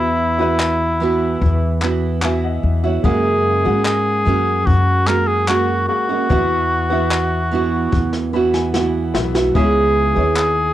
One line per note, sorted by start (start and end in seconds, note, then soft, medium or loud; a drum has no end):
0.00 1.38 E2 medium
0.00 0.39 E3 medium
0.00 0.32 B3 medium
0.00 0.40 B3 medium
0.00 0.39 E4 medium
0.00 1.79 E4 medium
0.00 0.33 F#4 medium
0.00 0.38 F#4 medium
0.00 0.33 E5 medium
0.39 1.84 B3 medium
0.39 1.00 B3 soft
0.39 1.01 E4 medium
0.39 1.00 F#4 medium
0.39 1.85 F#4 medium
0.39 1.85 B4 medium
0.60 clap loud
1.00 1.80 E3 medium
1.00 1.82 B3 medium
1.00 1.83 E4 medium
1.00 1.84 F#4 medium
1.42 2.60 E2 medium
1.42 kick medium
1.81 2.21 E3 medium
1.81 2.22 B3 medium
1.81 2.23 E4 medium
1.81 2.24 F#4 medium
1.81 clap medium
2.22 2.84 E3 medium
2.22 2.84 B3 medium
2.22 2.84 E4 medium
2.22 2.82 F#4 medium
2.22 2.43 E5 medium
2.22 2.43 G#5 medium
2.22 clap medium
2.44 2.83 D#5 medium
2.44 2.82 F#5 medium
2.63 3.01 E2 medium
2.84 3.05 B3 soft
2.84 3.05 E4 soft
2.84 3.04 F#4 soft
2.84 3.23 C#5 medium
2.84 3.23 E5 medium
3.03 3.61 F#2 medium
3.03 3.65 F#2 medium
3.03 3.66 C#3 medium
3.03 3.66 G#3 medium
3.03 3.58 A#3 medium
3.03 3.66 A#3 medium
3.03 3.65 C#4 medium
3.03 3.64 F#4 medium
3.03 3.59 G#4 medium
3.03 3.82 G#4 medium
3.03 3.59 F#5 medium
3.03 kick loud
3.64 4.23 G#2 medium
3.64 4.24 G#3 soft
3.64 5.10 A#3 medium
3.64 4.25 A#3 soft
3.64 4.26 C#4 soft
3.64 4.26 F#4 soft
3.64 5.10 G#4 medium
3.64 5.11 F#5 medium
3.85 4.68 G#4 medium
3.85 clap loud
4.25 4.64 F#2 medium
4.25 5.05 G#3 medium
4.25 5.06 A#3 medium
4.25 5.08 C#4 medium
4.25 5.09 F#4 medium
4.67 5.85 F#2 medium
4.67 5.09 F#4 medium
4.67 kick loud
5.06 5.46 G#3 medium
5.06 5.48 A#3 medium
5.06 5.48 C#4 medium
5.06 5.49 F#4 medium
5.06 5.29 A#4 medium
5.06 clap medium
5.28 5.48 G#4 medium
5.48 6.09 G#3 soft
5.48 6.10 A#3 medium
5.48 6.09 C#4 medium
5.48 5.87 F#4 medium
5.48 6.08 F#4 medium
5.48 clap loud
5.89 6.25 A#3 medium
5.89 8.29 F#4 medium
5.89 6.26 G#4 medium
5.89 6.26 F#5 medium
6.09 6.29 G#3 soft
6.09 6.30 A#3 soft
6.09 6.30 C#4 soft
6.09 6.30 F#4 soft
6.29 7.89 E2 loud
6.29 6.91 E3 medium
6.29 6.84 B3 medium
6.29 6.91 B3 medium
6.29 6.91 E4 medium
6.29 6.85 F#4 medium
6.29 6.89 F#4 medium
6.29 6.85 E5 medium
6.29 kick loud
6.90 8.35 B3 medium
6.90 7.52 B3 soft
6.90 7.53 E4 medium
6.90 7.52 F#4 medium
6.90 8.36 F#4 medium
6.90 8.36 E5 medium
7.11 clap loud
7.52 8.33 E3 medium
7.52 8.34 B3 medium
7.52 8.35 E4 medium
7.52 8.35 F#4 medium
7.92 9.11 E2 medium
7.92 kick loud
7.92 snare medium
8.13 snare soft
8.33 8.73 E3 medium
8.33 8.74 B3 medium
8.33 8.75 E4 medium
8.33 8.76 F#4 medium
8.33 8.52 B5 medium
8.54 8.73 G#5 medium
8.54 snare medium
8.73 9.35 E3 medium
8.73 9.35 B3 medium
8.73 9.35 E4 medium
8.73 9.33 F#4 medium
8.73 9.12 F#5 medium
8.73 snare medium
9.14 9.52 B1 medium
9.14 9.50 B3 medium
9.14 9.51 F#4 medium
9.14 9.51 E5 medium
9.14 snare medium
9.34 9.55 B3 soft
9.34 9.55 E4 soft
9.34 9.55 F#4 soft
9.34 snare medium
9.54 10.12 C#2 medium
9.54 10.16 C#3 medium
9.54 10.16 G#3 medium
9.54 10.09 B3 medium
9.54 10.17 B3 medium
9.54 10.09 E4 medium
9.54 10.16 E4 medium
9.54 10.33 G#4 medium
9.54 10.14 G#4 medium
9.54 10.10 C#5 medium
9.54 kick loud
10.15 10.73 D#2 medium
10.15 10.73 B3 medium
10.15 10.73 B3 soft
10.15 10.73 E4 medium
10.15 10.73 E4 soft
10.15 10.73 G#4 soft
10.15 10.73 C#5 medium
10.36 10.73 G#4 medium
10.36 clap loud